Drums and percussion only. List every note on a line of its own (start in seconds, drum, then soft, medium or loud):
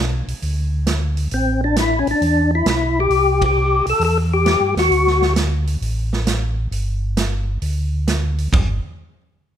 0.28 open hi-hat soft
0.42 open hi-hat soft
0.87 snare medium
0.87 closed hi-hat medium
1.17 open hi-hat soft
1.31 open hi-hat soft
1.76 snare medium
1.76 closed hi-hat medium
2.07 open hi-hat soft
2.22 open hi-hat soft
2.66 snare medium
2.66 closed hi-hat medium
3.10 open hi-hat soft
3.42 kick medium
3.42 ride medium
3.86 open hi-hat soft
4.01 open hi-hat soft
4.46 snare medium
4.46 closed hi-hat medium
4.77 snare soft
4.77 open hi-hat soft
4.92 open hi-hat soft
5.07 snare soft
5.22 snare soft
5.36 snare medium
5.36 closed hi-hat medium
5.67 open hi-hat soft
5.82 open hi-hat soft
6.13 snare soft
6.27 snare medium
6.27 closed hi-hat medium
6.72 open hi-hat soft
7.17 snare medium
7.17 closed hi-hat soft
7.62 open hi-hat soft
8.07 snare medium
8.07 closed hi-hat medium
8.38 open hi-hat soft
8.53 kick medium
8.53 floor tom medium
8.53 ride bell medium